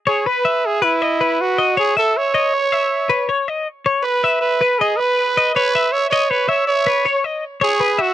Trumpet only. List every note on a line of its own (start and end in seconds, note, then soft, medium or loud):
0.08 0.28 G#4 medium
0.26 0.67 B4 medium
0.66 0.85 G#4 medium
0.83 1.43 E4 medium
1.41 1.78 F#4 medium
1.79 1.96 G#4 medium
1.98 2.19 A4 medium
2.17 3.30 C#5 loud
4.03 4.39 B4 medium
4.41 4.81 B4 medium
4.79 4.98 G#4 medium
4.97 5.54 B4 loud
5.55 5.94 B4 loud
5.93 6.10 C#5 loud
6.10 6.32 C#5 loud
6.31 6.51 B4 medium
6.49 6.67 C#5 medium
6.67 7.20 C#5 loud
7.63 8.03 G#4 loud
8.01 8.14 F#4 medium